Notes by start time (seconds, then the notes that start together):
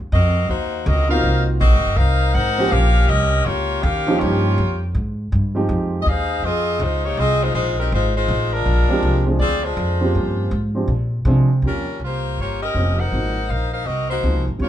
0.00 D#2
0.12 F2 C4 F#4 A#4 D#5
0.49 D#2 A#3 D#4 F#4 C5
0.86 C#2 C4 F#4 A#4 D#5
1.09 A#3 C4 D#4 F4 F#4 A#4 C5 F5
1.24 C2
1.60 A#1 C4 F#4 A#4 D#5
1.72 G#1
1.86 F#1
1.96 C2 D#4 A#4 C5 F5
2.34 G#1 D#4 A#4 C5 F#5
2.58 F3 A#3 C#4 G4 C5
2.71 A#1 C#4 G4 A#4 F5
3.08 C2 C#4 G4 A#4 D#5
3.45 C#2 A#3 F4 G4 C#5
3.83 D#2 C#4 G4 A#4 F5
4.07 F3 A#3 C#4 D#4 G4
4.20 G2 A#3 F4 G4 C#5
4.58 F2
4.95 G#2
5.32 G2
5.55 F3 G#3 C4 D#4 G4
5.69 F2
6.02 D#2 D#5
6.08 D#4 G#4 C5 F5
6.42 F2 C4 F4 G#4 D#5
6.79 C#2 G#3 D#4 F4 C5
7.04 A#3 D#4 G4 C#5
7.17 C2 C4 F4 G#4 D#5
7.43 G#3 D#4 F4 C5
7.54 A#1 G#3 D#4 F4 C5
7.79 G3 C4 D#4 A#4
7.92 G#1 G#3 D#4 F4 C5
8.16 G#3 D#4 F4 C5
8.28 A1
8.53 G#3 D4 F4 A#4
8.66 A#1
8.89 F3 G#3 C4 D4 G4
9.03 C2
9.26 F3 G#3 C4 D4 G#4
9.39 D2 C4 F4 G#4 D5
9.64 G#3 D4 F4 C5
9.77 F2
10.00 F3 A#3 C4 C#4 G4
10.15 G2
10.51 G#2
10.75 F3 G#3 C4 D4 G4
10.88 A#2
11.25 C3 F3 G#3 C4 D4 G#4
11.62 D#2 F3 A#3 C4 C#4 G4
11.66 G3 C#4 F4 A#4
12.00 C2
12.04 A#3 F4 G4 C5
12.38 G1 A#3 F4 G4 C#5
12.63 C#4 G4 A#4 D#5
12.74 F1 F3 A#3 C4 C#4 G4
12.99 D#4 A#4 C5 F#5
13.12 G#1 F3 A#3 C4 D#4 F#4
13.49 A#1 D#4 A#4 C5 F5
13.73 D#4 A#4 C5 F5
13.86 C2 C4 F#4 A#4 D#5
14.10 A#3 D#4 F#4 C5
14.22 C#2 F3 A#3 C4 D#4 G#4
14.35 C2
14.47 G#1
14.59 D#2 G3 A#3 C4 C#4 F4 G4 C#5